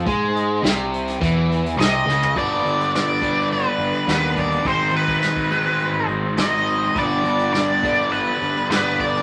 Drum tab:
HH |x-x-x-xxx-xxx---|x-xxx-x-x-xxx-xx|x-xxx-xxx-x-x-x-|x-xxx-x-x-xxx-xx|
SD |----o--o----o-o-|----o-------o---|----o-------o---|----o-------o---|
FT |---------------o|----------------|----------------|----------------|
BD |o-------o-------|o-----o-------o-|o--o-o----------|o-----o-------o-|